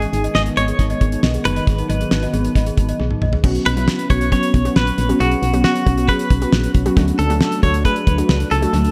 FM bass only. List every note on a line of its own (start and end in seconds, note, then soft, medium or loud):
0.13 0.28 G#1 loud
0.35 0.50 G#1 loud
0.57 0.72 G#1 loud
0.79 0.94 G#1 loud
1.01 1.17 G#1 loud
1.23 1.39 B1 loud
1.45 1.61 F#1 medium
1.67 1.83 G#1 loud
1.89 2.05 G#1 loud
2.11 2.27 G#1 medium
2.33 2.49 G#1 loud
2.55 2.71 G#1 loud
2.78 2.93 G#1 loud
3.00 3.15 B1 medium
3.22 3.37 A#1 medium
3.44 3.59 B1 loud
3.66 3.89 B1 medium
4.10 4.33 B1 loud
4.54 4.70 B1 loud
4.76 4.92 A#1 medium
4.98 5.14 A#1 loud
5.20 5.36 B1 loud
5.42 5.65 B1 loud
5.87 6.10 B1 loud
6.30 6.46 B1 medium
6.53 6.68 A#1 loud
6.75 6.90 B1 medium
6.97 7.12 D2 loud
7.19 7.42 D2 loud
7.63 7.86 D2 loud
8.07 8.23 D2 loud
8.29 8.45 C#2 loud
8.51 8.67 C#2 medium
8.73 8.89 D2 loud